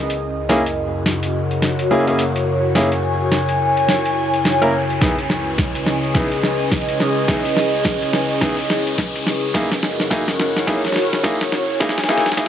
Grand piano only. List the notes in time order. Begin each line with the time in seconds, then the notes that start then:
0.49 A#3 C#4 E4 G#4
1.91 A#3 C#4 E4 G#4
2.08 A#3 C#4 E4 G#4
2.75 A#3 C#4 E4 G#4
4.62 A#3 C#4 E4 A#4
5.01 B3 D#4 E4 G#4
6.14 B3 D#4 E4 G#4
7.28 B3 D#4 E4 G#4
8.41 B3 D#4 E4 G#4
9.54 A#3 D#4 E4 G#4
10.10 A#3 D#4 E4 G#4
10.67 A#3 D#4 E4 G#4
11.23 A#3 D#4 E4 G#4
11.80 A#3 D#4 E4 G#4
12.08 A#3 D#4 E4 G#4
12.37 A#3 D#4 E4 G#4